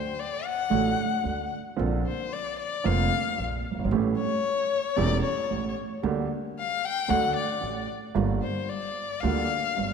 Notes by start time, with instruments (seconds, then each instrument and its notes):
Already playing: violin C5
0.19 violin D5
0.46 violin F#5
0.70 upright piano A1 A2 D3 F#3 A3 F#4, upright bass A1
1.23 upright piano D2 D3, upright bass D2
1.76 upright piano A#1 A#2 D3 A#3 C4 F4, upright bass A#1
2.06 violin C5
2.33 violin D5
2.59 violin D5
2.84 upright piano F1 F2 D3 A#3 C4 F4, upright bass F1, violin F5
3.38 upright piano A#1 A#2, upright bass A#1
3.71 upright piano F#1, upright bass F#1
3.78 upright bass G1, upright piano G1
3.84 upright bass G#1, upright piano G#1
3.91 upright bass A1, upright piano A1 A2 E3 A3 C#4 G4
4.17 violin C#5
4.96 upright piano E1 E2 E3 A3 C#4 G4, upright bass E1, violin D5
5.22 violin C#5
5.50 upright piano A1 A2, upright bass A1
6.03 upright piano D2 D3 G3 A#3 G4, upright bass D2
6.59 violin F5
6.85 violin G5
7.08 upright piano D2 D3 F#3 A3 F#4, upright bass D2, violin F#5
7.36 violin D5
7.61 upright piano A1 A2, upright bass A1
8.15 upright piano G1 G2 D3 G3 A#3 F4, upright bass G1
8.42 violin C5
8.69 violin D5
9.20 upright piano D2 D3 G3 A#3 F4, upright bass D2, violin F5
9.77 upright piano G1 G2, upright bass G1